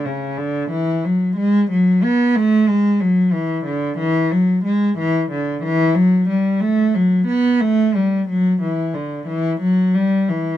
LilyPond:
\new Staff \with { instrumentName = "Cello" } { \clef bass \time 4/4 \key e \mixolydian \tempo 4 = 91 cis8 d8 e8 fis8 gis8 fis8 b8 a8 | gis8 fis8 e8 d8 e8 fis8 gis8 e8 | \key fis \phrygian d8 e8 fis8 g8 a8 fis8 b8 a8 | g8 fis8 e8 d8 e8 fis8 g8 e8 | }